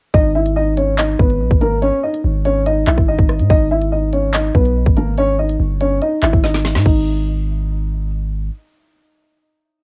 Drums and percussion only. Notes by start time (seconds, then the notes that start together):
0.14 kick, closed hi-hat
0.46 closed hi-hat
0.77 closed hi-hat
0.98 clap
1.19 kick
1.30 closed hi-hat
1.51 kick, closed hi-hat
1.61 closed hi-hat
1.82 closed hi-hat
2.14 closed hi-hat
2.45 closed hi-hat
2.66 closed hi-hat
2.87 clap
2.98 kick, cross-stick, closed hi-hat
3.18 kick, closed hi-hat
3.29 cross-stick
3.39 closed hi-hat
3.50 kick, closed hi-hat
3.82 closed hi-hat
4.13 closed hi-hat
4.34 clap
4.55 kick
4.66 closed hi-hat
4.86 kick, closed hi-hat
4.97 closed hi-hat
5.18 closed hi-hat
5.49 closed hi-hat
5.81 closed hi-hat
6.02 closed hi-hat
6.23 clap
6.33 kick, closed hi-hat
6.44 snare
6.54 snare, closed hi-hat
6.65 snare
6.75 snare, closed hi-hat
6.82 kick, closed hi-hat, crash
6.89 closed hi-hat